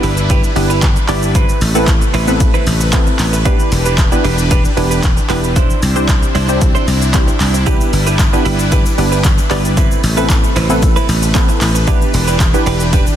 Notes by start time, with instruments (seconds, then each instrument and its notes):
Already playing: supersaw synth G3 D4 E4 B4, synth stab B3 D4 E4 G4 B4, impact
0.03 slap bass G1, clean electric guitar E4 G4 B4, open hi-hat, shaker
0.17 muted clean electric guitar stroke, shaker
0.30 clean electric guitar E4 G4 B4, kick, closed hi-hat, shaker
0.44 muted clean electric guitar stroke, shaker
0.56 slap bass G1, synth stab B3 D4 E4 G4 B4, muted clean electric guitar stroke, open hi-hat, shaker
0.70 clean electric guitar E4 G4 B4, shaker
0.82 kick, clap, closed hi-hat, shaker
0.96 muted clean electric guitar stroke, shaker
1.08 slap bass G1, synth stab B3 D4 E4 G4 D5, clean electric guitar E4 G4 B4, clap, open hi-hat, shaker
1.23 muted clean electric guitar stroke, shaker
1.35 supersaw synth C3 A3 B4, clean electric guitar C4 E4 B4, kick, closed hi-hat, shaker
1.49 shaker
1.61 slap bass A1, open hi-hat, shaker
1.75 synth stab B3 C4 E4 A4 B4, clean electric guitar C4 E4 B4, shaker
1.88 muted clean electric guitar stroke, kick, clap, closed hi-hat, shaker
2.01 muted clean electric guitar stroke, shaker
2.14 slap bass A1, clean electric guitar C4 E4 B4, open hi-hat, shaker
2.28 synth stab B3 C4 E4 A4 B4, muted clean electric guitar stroke, shaker
2.40 muted clean electric guitar stroke, kick, closed hi-hat, shaker
2.54 clean electric guitar C4 E4 B4, shaker
2.66 slap bass A1, muted clean electric guitar stroke, open hi-hat, shaker
2.80 muted clean electric guitar stroke, shaker
2.93 synth stab B3 C4 E4 A4 B4, muted clean electric guitar stroke, kick, clap, closed hi-hat, shaker
3.07 muted clean electric guitar stroke, shaker
3.19 slap bass A1, clap, open hi-hat, shaker
3.33 muted clean electric guitar stroke, shaker
3.45 supersaw synth E3 D4 G4, synth stab B3 D4 E4 G4 B4, clean electric guitar D4 G4 B4, kick, closed hi-hat, shaker
3.60 shaker
3.72 slap bass E1, open hi-hat, shaker
3.86 clean electric guitar D4 G4 B4, shaker
3.98 kick, clap, closed hi-hat, shaker
4.12 synth stab B3 D4 E4 G4 B4, muted clean electric guitar stroke, shaker
4.24 slap bass E1, clean electric guitar D4 G4 B4, open hi-hat, shaker
4.38 muted clean electric guitar stroke, shaker
4.51 clean electric guitar D4 G4 B4, kick, closed hi-hat, shaker
4.65 muted clean electric guitar stroke, shaker
4.77 slap bass E1, synth stab B3 D4 E4 G4 B4, muted clean electric guitar stroke, open hi-hat, shaker
4.91 clean electric guitar D4 G4 B4, shaker
5.03 kick, clap, closed hi-hat, shaker
5.17 muted clean electric guitar stroke, shaker
5.29 slap bass E1, synth stab B3 D4 E4 G4 B4, clean electric guitar D4 G4 B4, clap, open hi-hat, shaker
5.43 muted clean electric guitar stroke, shaker
5.56 supersaw synth C3 C4 D4 E4, clean electric guitar D4 E4 C5, kick, closed hi-hat, shaker
5.70 shaker
5.82 slap bass C2, muted clean electric guitar stroke, open hi-hat, shaker
5.96 synth stab C4 D4 E4 G4 C5, clean electric guitar D4 E4 C5, shaker
6.08 muted clean electric guitar stroke, kick, clap, closed hi-hat, shaker
6.22 muted clean electric guitar stroke, shaker
6.35 slap bass C2, clean electric guitar D4 E4 C5, open hi-hat, shaker
6.49 synth stab C4 D4 E4 G4 C5, muted clean electric guitar stroke, shaker
6.61 muted clean electric guitar stroke, kick, closed hi-hat, shaker
6.75 clean electric guitar D4 E4 C5, shaker
6.87 slap bass C2, muted clean electric guitar stroke, open hi-hat, shaker
7.01 muted clean electric guitar stroke, shaker
7.14 synth stab C4 D4 E4 G4 C5, muted clean electric guitar stroke, kick, clap, closed hi-hat, shaker
7.28 muted clean electric guitar stroke, shaker
7.40 slap bass C2, clap, open hi-hat, shaker
7.54 muted clean electric guitar stroke, shaker
7.66 supersaw synth G3 D4 B4, synth stab B3 D4 E4 G4 B4, clean electric guitar E4 G4 B4, kick, closed hi-hat, shaker
7.81 shaker
7.93 slap bass G1, open hi-hat, shaker
8.07 clean electric guitar E4 G4 B4, shaker
8.19 muted clean electric guitar stroke, kick, clap, closed hi-hat, shaker
8.33 synth stab B3 D4 E4 G4 B4, muted clean electric guitar stroke, shaker
8.45 slap bass G1, clean electric guitar E4 G4 B4, open hi-hat, shaker
8.59 muted clean electric guitar stroke, shaker
8.72 clean electric guitar E4 G4 B4, kick, closed hi-hat, shaker
8.86 muted clean electric guitar stroke, shaker
8.98 slap bass G1, synth stab B3 D4 E4 G4 B4, muted clean electric guitar stroke, open hi-hat, shaker
9.12 clean electric guitar E4 G4 B4, shaker
9.24 kick, clap, closed hi-hat, shaker
9.38 muted clean electric guitar stroke, shaker
9.50 slap bass G1, synth stab B3 D4 E4 G4 D5, clean electric guitar E4 G4 B4, clap, open hi-hat, shaker
9.65 muted clean electric guitar stroke, shaker
9.77 supersaw synth C3 A3 B4, clean electric guitar C4 E4 B4, kick, closed hi-hat, shaker
9.91 shaker
10.03 slap bass A1, open hi-hat, shaker
10.17 synth stab B3 C4 E4 A4 B4, clean electric guitar C4 E4 B4, shaker
10.30 kick, clap, closed hi-hat, shaker
10.44 muted clean electric guitar stroke, shaker
10.56 slap bass A1, clean electric guitar C4 E4 B4, open hi-hat, shaker
10.70 synth stab B3 C4 E4 A4 B4, muted clean electric guitar stroke, shaker
10.82 muted clean electric guitar stroke, kick, closed hi-hat, shaker
10.96 clean electric guitar C4 E4 B4, shaker
11.09 slap bass A1, open hi-hat, shaker
11.22 muted clean electric guitar stroke, shaker
11.35 synth stab B3 C4 E4 A4 B4, muted clean electric guitar stroke, kick, clap, closed hi-hat, shaker
11.49 muted clean electric guitar stroke, shaker
11.61 slap bass A1, clap, open hi-hat, shaker
11.75 muted clean electric guitar stroke, shaker
11.87 supersaw synth E3 D4 G4, synth stab B3 D4 E4 G4 B4, clean electric guitar D4 G4 B4, kick, closed hi-hat, shaker
12.02 shaker
12.14 slap bass E1, muted clean electric guitar stroke, open hi-hat, shaker
12.28 clean electric guitar D4 G4 B4, shaker
12.40 muted clean electric guitar stroke, kick, clap, closed hi-hat, shaker
12.54 synth stab B3 D4 E4 G4 B4, muted clean electric guitar stroke, shaker
12.66 slap bass E1, clean electric guitar D4 G4 B4, open hi-hat, shaker
12.80 muted clean electric guitar stroke, shaker
12.93 clean electric guitar D4 G4 B4, kick, closed hi-hat, shaker
13.07 muted clean electric guitar stroke, shaker